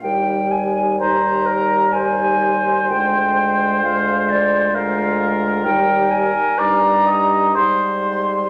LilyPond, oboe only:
\new Staff \with { instrumentName = "Oboe" } { \time 3/4 \key ees \major \tempo 4 = 63 r4 c''8 bes'8 c''4~ | c''2 bes'4 | bes'4 d''8 ees''8 c''8 r8 | }